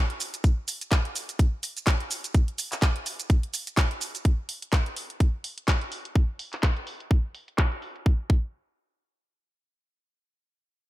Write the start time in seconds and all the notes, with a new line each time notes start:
0.10 closed hi-hat
0.20 open hi-hat, shaker
0.34 closed hi-hat, shaker
0.44 kick, closed hi-hat, shaker
0.68 open hi-hat, shaker
0.81 closed hi-hat, shaker
0.92 kick, clap, closed hi-hat, shaker
1.05 closed hi-hat
1.16 open hi-hat, shaker
1.29 closed hi-hat, shaker
1.39 kick, closed hi-hat, shaker
1.63 open hi-hat, shaker
1.77 closed hi-hat, shaker
1.87 kick, clap, closed hi-hat, shaker
2.00 closed hi-hat
2.11 open hi-hat, shaker
2.24 closed hi-hat, shaker
2.34 kick, closed hi-hat, shaker
2.48 closed hi-hat
2.58 open hi-hat, shaker
2.72 clap, closed hi-hat, shaker
2.82 kick, clap, closed hi-hat, shaker
2.96 closed hi-hat
3.06 open hi-hat, shaker
3.20 closed hi-hat, shaker
3.30 kick, closed hi-hat, shaker
3.43 closed hi-hat
3.54 open hi-hat, shaker
3.67 closed hi-hat, shaker
3.77 kick, clap, closed hi-hat, shaker
3.91 closed hi-hat
4.01 open hi-hat, shaker
4.15 closed hi-hat, shaker
4.25 kick, closed hi-hat
4.49 open hi-hat
4.62 closed hi-hat
4.73 kick, clap, closed hi-hat
4.86 closed hi-hat
4.96 open hi-hat
5.10 closed hi-hat
5.20 kick, closed hi-hat
5.44 open hi-hat
5.58 closed hi-hat
5.68 kick, clap, closed hi-hat
5.81 closed hi-hat
5.92 open hi-hat
6.05 closed hi-hat
6.15 kick, closed hi-hat
6.39 open hi-hat
6.53 clap, closed hi-hat
6.63 kick, clap, closed hi-hat
6.77 closed hi-hat
6.87 open hi-hat
7.00 closed hi-hat
7.11 kick, closed hi-hat
7.35 open hi-hat
7.48 closed hi-hat
7.58 kick, clap, closed hi-hat
7.72 closed hi-hat
7.82 open hi-hat
7.96 closed hi-hat
8.06 kick
8.30 kick